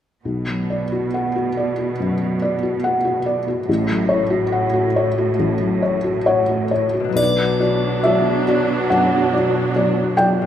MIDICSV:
0, 0, Header, 1, 6, 480
1, 0, Start_track
1, 0, Key_signature, 2, "minor"
1, 0, Tempo, 875912
1, 139, Time_signature, 4, 2, 24, 8
1, 1096, Tempo, 840336
1, 2536, Tempo, 879765
1, 4456, Tempo, 851064
1, 5822, End_track
2, 0, Start_track
2, 0, Title_t, "Felt piano"
2, 0, Program_c, 0, 0
2, 137, Note_on_c, 0, 35, 28
2, 238, Control_c, 0, 64, 127
2, 260, Note_on_c, 0, 54, 23
2, 384, Note_on_c, 0, 74, 23
2, 455, Note_off_c, 0, 54, 0
2, 504, Note_on_c, 0, 66, 25
2, 576, Note_off_c, 0, 74, 0
2, 626, Note_on_c, 0, 78, 25
2, 694, Note_off_c, 0, 66, 0
2, 743, Note_on_c, 0, 66, 26
2, 814, Note_off_c, 0, 78, 0
2, 861, Note_on_c, 0, 74, 23
2, 931, Note_off_c, 0, 66, 0
2, 977, Note_on_c, 0, 66, 24
2, 1049, Note_off_c, 0, 74, 0
2, 1073, Note_off_c, 0, 35, 0
2, 1096, Note_on_c, 0, 42, 28
2, 1169, Note_off_c, 0, 66, 0
2, 1219, Note_on_c, 0, 54, 25
2, 1291, Note_off_c, 0, 42, 0
2, 1337, Note_on_c, 0, 74, 28
2, 1413, Note_off_c, 0, 54, 0
2, 1455, Note_on_c, 0, 66, 28
2, 1531, Note_off_c, 0, 74, 0
2, 1576, Note_on_c, 0, 78, 31
2, 1649, Note_off_c, 0, 66, 0
2, 1694, Note_on_c, 0, 66, 31
2, 1769, Note_off_c, 0, 78, 0
2, 1816, Note_on_c, 0, 74, 30
2, 1887, Note_off_c, 0, 66, 0
2, 1940, Note_on_c, 0, 66, 29
2, 2006, Note_off_c, 0, 74, 0
2, 2057, Note_off_c, 0, 66, 0
2, 2059, Note_on_c, 0, 33, 43
2, 2065, Control_c, 0, 64, 0
2, 2154, Control_c, 0, 64, 127
2, 2174, Note_on_c, 0, 54, 31
2, 2289, Note_on_c, 0, 73, 34
2, 2366, Note_off_c, 0, 54, 0
2, 2411, Note_on_c, 0, 66, 36
2, 2485, Note_off_c, 0, 73, 0
2, 2537, Note_on_c, 0, 78, 35
2, 2605, Note_off_c, 0, 66, 0
2, 2653, Note_on_c, 0, 66, 34
2, 2725, Note_off_c, 0, 78, 0
2, 2777, Note_on_c, 0, 73, 33
2, 2842, Note_off_c, 0, 66, 0
2, 2896, Note_on_c, 0, 66, 31
2, 2963, Note_off_c, 0, 73, 0
2, 2988, Note_off_c, 0, 33, 0
2, 3010, Note_on_c, 0, 33, 36
2, 3081, Note_off_c, 0, 66, 0
2, 3128, Note_on_c, 0, 54, 29
2, 3248, Note_on_c, 0, 73, 30
2, 3318, Note_off_c, 0, 54, 0
2, 3364, Note_on_c, 0, 66, 29
2, 3440, Note_off_c, 0, 73, 0
2, 3485, Note_on_c, 0, 73, 45
2, 3487, Note_on_c, 0, 78, 30
2, 3560, Note_off_c, 0, 66, 0
2, 3609, Note_on_c, 0, 66, 27
2, 3685, Note_off_c, 0, 78, 0
2, 3723, Note_off_c, 0, 73, 0
2, 3732, Note_on_c, 0, 73, 25
2, 3809, Note_off_c, 0, 66, 0
2, 3853, Note_on_c, 0, 66, 24
2, 3930, Note_off_c, 0, 73, 0
2, 3960, Note_off_c, 0, 33, 0
2, 3972, Note_on_c, 0, 35, 34
2, 3977, Note_off_c, 0, 66, 0
2, 3978, Note_on_c, 0, 74, 42
2, 3991, Control_c, 0, 64, 0
2, 4078, Control_c, 0, 64, 127
2, 4206, Note_off_c, 0, 35, 0
2, 4210, Note_off_c, 0, 74, 0
2, 4215, Note_on_c, 0, 66, 25
2, 4218, Note_on_c, 0, 74, 26
2, 4432, Note_off_c, 0, 66, 0
2, 4434, Note_off_c, 0, 74, 0
2, 4453, Note_on_c, 0, 76, 46
2, 4457, Note_on_c, 0, 54, 26
2, 4459, Note_on_c, 0, 66, 23
2, 4461, Note_on_c, 0, 74, 27
2, 4677, Note_off_c, 0, 54, 0
2, 4679, Note_off_c, 0, 66, 0
2, 4679, Note_off_c, 0, 74, 0
2, 4702, Note_on_c, 0, 66, 24
2, 4706, Note_on_c, 0, 74, 26
2, 4917, Note_off_c, 0, 76, 0
2, 4920, Note_off_c, 0, 66, 0
2, 4922, Note_off_c, 0, 74, 0
2, 4941, Note_on_c, 0, 78, 46
2, 4942, Note_on_c, 0, 42, 32
2, 5174, Note_off_c, 0, 42, 0
2, 5182, Note_on_c, 0, 66, 26
2, 5185, Note_on_c, 0, 74, 29
2, 5398, Note_off_c, 0, 66, 0
2, 5400, Note_off_c, 0, 74, 0
2, 5421, Note_on_c, 0, 54, 27
2, 5422, Note_on_c, 0, 66, 26
2, 5427, Note_on_c, 0, 74, 30
2, 5635, Note_off_c, 0, 78, 0
2, 5636, Note_off_c, 0, 54, 0
2, 5636, Note_off_c, 0, 66, 0
2, 5638, Note_off_c, 0, 74, 0
2, 5658, Note_on_c, 0, 54, 26
2, 5658, Note_on_c, 0, 79, 50
2, 5661, Note_on_c, 0, 74, 28
2, 5822, Note_off_c, 0, 54, 0
2, 5822, Note_off_c, 0, 74, 0
2, 5822, Note_off_c, 0, 79, 0
2, 5822, End_track
3, 0, Start_track
3, 0, Title_t, "Viola section"
3, 0, Program_c, 1, 48
3, 3981, Note_on_c, 1, 54, 38
3, 3984, Note_on_c, 1, 62, 39
3, 5822, Note_off_c, 1, 54, 0
3, 5822, Note_off_c, 1, 62, 0
3, 5822, End_track
4, 0, Start_track
4, 0, Title_t, "Harp"
4, 0, Program_c, 2, 46
4, 3888, Note_on_c, 2, 47, 29
4, 3912, Note_on_c, 2, 62, 25
4, 3936, Note_on_c, 2, 54, 23
4, 3961, Note_on_c, 2, 71, 25
4, 5797, Note_on_c, 2, 45, 33
4, 5822, Note_off_c, 2, 45, 0
4, 5822, Note_off_c, 2, 47, 0
4, 5822, Note_off_c, 2, 54, 0
4, 5822, Note_off_c, 2, 62, 0
4, 5822, Note_off_c, 2, 71, 0
4, 5822, End_track
5, 0, Start_track
5, 0, Title_t, "Cello section"
5, 0, Program_c, 3, 48
5, 135, Note_on_c, 3, 47, 31
5, 2030, Note_off_c, 3, 47, 0
5, 2052, Note_on_c, 3, 45, 44
5, 3846, Note_off_c, 3, 45, 0
5, 3982, Note_on_c, 3, 47, 37
5, 5822, Note_off_c, 3, 47, 0
5, 5822, End_track
6, 0, Start_track
6, 0, Title_t, "Drums"
6, 3979, Note_on_c, 9, 81, 27
6, 4034, Note_off_c, 9, 81, 0
6, 5822, End_track
0, 0, End_of_file